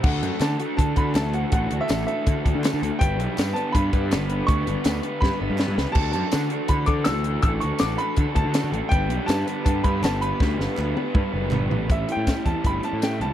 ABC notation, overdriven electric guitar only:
X:1
M:4/4
L:1/8
Q:1/4=162
K:D
V:1 name="Overdriven electric guitar"
[D,A,DFA] [DFA] [A,DFA] [D,A,DFA] [A,DFA] [D,A,DFA] [A,DFA] [DFA] | [D,A,DFA] [DFA] [A,DFA] [D,A,DFA] [A,DFA] [D,A,DFA] [A,DFA] [DFA] | [G,B,DB] [B,DB] [G,B,DB] [G,B,DB] [G,B,DB] [G,B,DB] [G,B,DB] [B,DB] | [G,B,DB] [B,DB] [G,B,DB] [G,B,DB] [G,B,DB] [G,B,DB] [G,B,DB] [B,DB] |
[D,DFA] [DFA] [D,DFA] [D,DFA] [D,DFA] [D,DFA] [D,DFA] [DFA] | [D,DFA] [DFA] [D,DFA] [D,DFA] [D,DFA] [D,DFA] [D,DFA] [DFA] | [G,B,DB] [B,DB] [G,B,DB] [G,B,DB] [G,B,DB] [G,B,DB] [G,B,DB] [B,DB] | [G,B,DB] [B,DB] [G,B,DB] [G,B,DB] [G,B,DB] [G,B,DB] [G,B,DB] [B,DB] |
[A,,E,G,CE] [A,,E,G,CE] [A,,E,G,CE] [A,,E,G,CE] [A,,E,G,CE] [A,,E,G,CE] [A,,E,G,CE] [A,,E,G,CE] |]